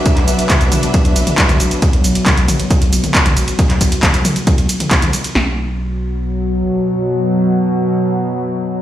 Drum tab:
RD |xxxxxxxxxxxxxxxx|xxxxxxxxxxxxxxxx|xxxxxxxxxxxxxxxx|----------------|
HH |xxoxxxoxxxoxxxox|xxoxxxoxxxoxxxox|xxoxxxoxxxoxxxox|----------------|
SH |x-xxxxxxxxxxxxxx|x-xxxxxxxxxxxxxx|x-xxxxxxxxxxxxxx|----------------|
CP |-x--x-------x---|----x-------x---|-x--x-------x---|----------------|
SD |----------------|----------------|----------------|o---------------|
T2 |----o-o----o-o--|----o-o----o-o--|----o-o----o-o--|----------------|
BD |o---o---o---o---|o---o---o---o---|o-o-o---o---o---|----------------|

RD |----------------|
HH |----------------|
SH |----------------|
CP |----------------|
SD |----------------|
T2 |----------------|
BD |----------------|